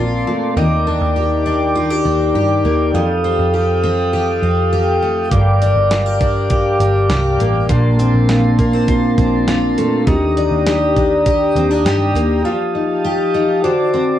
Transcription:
Already playing: A#1 A#2 F3 C4 F4 A#4 D5 A5 C6
0.27 A3
0.56 D#2 D#3 A#4 D5 G5 D6
0.87 D4
1.01 D#2
1.16 G4
1.46 D4
1.76 F4
1.91 G4
2.05 D#2 D4
2.35 G2 G4
2.65 D#2 A#3
2.94 F2 A4 F5 D#6
3.24 C4
3.39 F2
3.54 G4
3.83 C4
4.13 G4
4.43 F2 C4
4.73 G4
5.02 A3
5.31 G1 G2 A#4 D6, kick, closed hi-hat
5.62 D4, closed hi-hat
5.76 G1
5.91 F4, snare, closed hi-hat
6.06 G4
6.21 D4, kick, closed hi-hat
6.50 G4, kick, closed hi-hat
6.80 G1 D4, closed hi-hat
7.10 C2 G4, snare, closed hi-hat
7.40 A1 A#3, closed hi-hat
7.69 A#1 A#2 D4 A5 C6, kick, closed hi-hat
7.99 C4, closed hi-hat
8.14 A#1
8.29 F4, snare, closed hi-hat
8.58 A#3, kick, closed hi-hat
8.73 C4
8.88 F4, kick, closed hi-hat
9.18 A#1 C4, kick, closed hi-hat
9.48 F4, snare, closed hi-hat
9.78 A3, closed hi-hat
10.07 D#2 D#3 G4 A#5 D#6, kick, closed hi-hat
10.37 D4, closed hi-hat
10.51 D#2
10.67 G4, snare, closed hi-hat
10.97 D4, kick, closed hi-hat
11.26 G4, kick, closed hi-hat
11.55 D#2 C4, closed hi-hat
11.71 D4
11.85 G2 G4, snare, closed hi-hat
12.15 D#2 A#3, closed hi-hat
12.45 F3 G4 F5 A5
12.75 D#4
13.05 G4
13.34 D#4
13.64 D3 F#4 C5 D6
13.93 C4

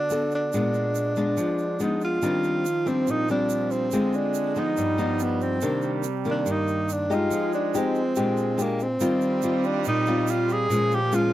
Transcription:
Already playing: D3 D4
0.10 B3 F#4 A4, shaker
0.31 D4, shaker
0.53 A#2 G#3 B3 D4, shaker
0.74 shaker
0.95 shaker
1.16 G#3 B3 D4, shaker
1.37 F3, shaker
1.58 shaker
1.80 G#3 B3 D4 D#4, shaker
2.01 F4, shaker
2.21 D#3 F3 G3 C4 D4, shaker
2.44 shaker
2.65 shaker
2.86 G3 C4 D4, shaker
3.07 A#2 D#4, shaker
3.28 G3 C4 D4, shaker
3.50 shaker
3.71 C4, shaker
3.91 D3 G#3 C4 F4, shaker
4.14 D4, shaker
4.34 shaker
4.55 F3 B3 D#4, shaker
4.77 G2 G3, shaker
4.98 F3 B3 D#4, shaker
5.19 B3, shaker
5.41 C4, shaker
5.61 C3 D#3 G3 A#3 D4, shaker
5.82 shaker
6.03 shaker
6.25 D#3 A#3, shaker
6.31 D4
6.46 G2, shaker
6.51 D#4
6.68 shaker
6.89 D4, shaker
7.10 G#3 D#4 G4, shaker
7.14 F4
7.30 F3 G#3, shaker
7.53 D4, shaker
7.74 G#3 C4 D#4 G4, shaker
7.95 shaker
8.16 A#2 G#3 D4 G4, shaker
8.37 shaker
8.57 G#3 D4 G4, shaker
8.62 A#3
8.80 C4, shaker
9.00 D#3 G3 C4 F4 G4 D#5, shaker
9.21 shaker
9.42 G3 C4 F4, shaker
9.64 D4, shaker
9.84 A#2 D#4, shaker
10.06 G3 C4 F4, shaker
10.27 F4, shaker
10.49 G#4, shaker
10.70 A#2 F3 G#3 A#3 C#4 F4 G#4 C#5, shaker
10.91 G4, shaker
11.12 G#3 C#4 F4, shaker

